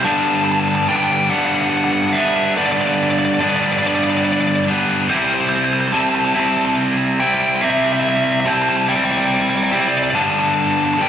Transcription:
0.02 G2 D3 G3 B3 C5 A5
0.07 D4
0.12 A5
0.20 A5
0.28 A5
0.35 A5
0.44 A5
0.52 A5
0.60 A5
0.68 A5
0.75 A5
0.83 A5
0.88 D3 G3 B3 D4 G5
0.96 G5
1.04 G5
1.12 G5
1.20 G5
1.30 G2 D3 G3 B3 D4 F#5
1.38 F#5
1.45 F#5
1.54 F#5
1.62 F#5
1.70 F#5
1.77 F#5
1.84 F#5
1.93 F#5
2.02 F#5
2.10 E5 F#5
2.14 G3 B3 D4
2.20 E5
2.28 E5
2.37 E5
2.44 E5
2.56 G2 D3 G3 B3 D4 D5
2.66 D5
2.72 D5
2.81 D5
2.87 D5
2.94 D5
3.03 D5
3.10 D5
3.19 D5
3.25 D5
3.34 D5
3.40 D3 G3 B3 D4 D5
3.49 D5
3.56 D5
3.64 D5
3.72 D5
3.79 D4 D5
3.83 G2 D3 G3 B3 D5
3.95 D5
4.03 D5
4.10 D5
4.17 D5
4.25 D5
4.32 D5
4.41 D5
4.47 D5
4.55 D5
4.66 G3 B3 D4
5.08 C3 G3 C4 E4 C5
5.18 C5
5.25 C5
5.34 C5
5.40 C5
5.49 C5
5.56 C5
5.64 C5
5.73 C5
5.80 C5
5.88 C5
5.92 C3 G3 C4 E4 A5
6.01 A5
6.09 A5
6.15 A5
6.25 A5
6.33 G3 C4 E4 A5
6.37 C3 A5
6.49 A5
6.57 A5
6.65 A5
7.20 G3 C4 E4 G5
7.27 G5
7.34 G5
7.42 G5
7.48 G5
7.56 G5
7.61 C3 G3 C4 E4 E5
7.70 E5
7.77 E5
7.85 E5
7.93 E5
8.00 E5
8.08 E5
8.16 E5
8.24 E5
8.32 E5
8.40 E5
8.45 C3 G3 C4 E4 A5
8.53 A5
8.62 A5
8.69 A5
8.77 A5
8.88 C3 G3 C4 E4 D5 G5
8.96 D5 G5
9.04 D5 G5
9.11 D5 G5
9.18 D5 G5
9.25 D5 G5
9.34 D5 G5
9.41 D5 G5
9.49 D5 G5
9.56 D5 G5
9.64 D5 G5
9.71 G3 C4 E4 D5 G5
9.79 D5 G5
9.88 D5
9.97 D5
10.03 D5
10.10 G2 D3 D5
10.15 G3 B3 D4 A5
10.23 A5
10.30 A5
10.39 A5
10.46 A5
10.54 A5
10.63 A5
10.71 A5
10.78 A5
10.85 A5
10.94 D3 A5
10.99 G3 B3 D4 G5

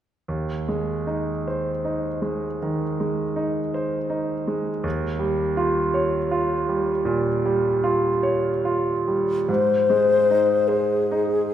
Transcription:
0.28 D#2
0.69 G#3
1.07 D#4
1.48 C5
1.85 D#4
2.22 G#3
2.62 D#3
3.00 G#3
3.36 D#4
3.74 C5
4.10 D#4
4.48 G#3
4.84 D#2
5.19 G3
5.57 F4
5.94 C#5
6.31 F4
6.69 G3
7.05 A#2
7.45 G3
7.84 F4
8.23 C#5
8.65 F4
9.08 G3
9.49 G#2 C5
9.90 G#3
10.31 D#4
10.68 G#4 C5
11.12 D#4

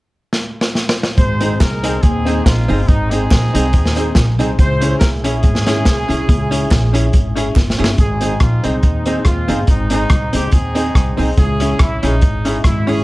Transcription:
0.33 snare
0.61 snare
0.75 snare
0.89 snare
1.03 snare
1.18 G#1 D#4 G#4 C5, kick, closed hi-hat
1.41 C4 D#4 G#4, closed hi-hat
1.60 C2 D#4 A#4, muted hollow-body jazz guitar stroke, kick, snare, clap, closed hi-hat
1.83 C4 D#4 G#4, closed hi-hat
2.03 D#2 C4 D#4 G#4, kick, closed hi-hat
2.25 C4 D#4 G#4, closed hi-hat
2.46 A#1 G#3 C4 F4, kick, snare, clap, closed hi-hat
2.68 G1 C4 D#4 G#4, open hi-hat
2.88 G#1 G#3 C4 D#4, kick, closed hi-hat
3.11 C4 D#4 G#4, closed hi-hat
3.31 A#1, muted hollow-body jazz guitar stroke, kick, snare, clap, closed hi-hat
3.53 C2 C4 D#4 G#4, closed hi-hat
3.73 D#2, kick, closed hi-hat
3.85 snare
3.96 C4 D#4 G#4, closed hi-hat
4.15 A#1, kick, snare, clap, closed hi-hat
4.39 C2 C4 D#4 G#4, closed hi-hat
4.59 C#2 E4 G#4 C5, kick, closed hi-hat
4.81 C#4 E4 G#4, closed hi-hat
5.00 C2 A#4, muted hollow-body jazz guitar stroke, kick, snare, clap, closed hi-hat
5.23 A#1 C#4 E4 G#4, closed hi-hat
5.43 G#1, kick, closed hi-hat
5.55 snare
5.66 C#4 E4 G#4, snare, closed hi-hat
5.85 C2, kick, snare, clap, closed hi-hat
6.08 C2 C#4 E4 G#4, closed hi-hat
6.29 C#2, kick, closed hi-hat
6.51 C#4 E4 G#4, closed hi-hat
6.71 A#1, muted hollow-body jazz guitar stroke, kick, snare, clap, closed hi-hat
6.93 C#4 E4 G#4, closed hi-hat
7.13 G#1, kick, closed hi-hat
7.35 C#4 E4 G#4, closed hi-hat
7.56 G1, kick, snare, clap
7.70 snare
7.78 G1 C#4 E4 G#4
7.84 snare
7.98 G#1 C4 D#4 G#4, kick, closed hi-hat
8.21 C4 D#4 G#4, closed hi-hat
8.40 A#1 F4, muted hollow-body jazz guitar stroke, kick, cross-stick, closed hi-hat
8.63 C2 G#3 C4 D#4 G#4, closed hi-hat
8.83 D#2, kick, closed hi-hat
9.06 C4 D#4 G#4, closed hi-hat
9.25 D#2 G#3 C4 F4, kick, cross-stick, closed hi-hat
9.48 G1 C4 D#4 G#4, closed hi-hat
9.67 G#1 G#3 C4 D#4, kick, closed hi-hat
9.90 G#3 C4 D#4 G#4, closed hi-hat
10.09 C2, muted hollow-body jazz guitar stroke, kick, cross-stick, closed hi-hat
10.33 C#2 C4 D#4 G4 G#4, closed hi-hat
10.51 D#2 C4 D#4 G#4, kick, closed hi-hat
10.75 C4 D#4 G#4, closed hi-hat
10.95 C2, kick, cross-stick, closed hi-hat
11.17 C2 C4 D#4 G#4, open hi-hat
11.37 C#2 C#4 E4 G#4, kick, closed hi-hat
11.60 C#4 E4 G#4, closed hi-hat
11.79 C2 E4, muted hollow-body jazz guitar stroke, kick, cross-stick, closed hi-hat
12.03 A#1 G#3 C#4 D#4 E4 G#4, closed hi-hat
12.21 G#1, kick, closed hi-hat
12.45 C#4 E4 G#4, closed hi-hat
12.64 G#1 E4, kick, cross-stick, closed hi-hat
12.87 C#4 E4 G#4, open hi-hat

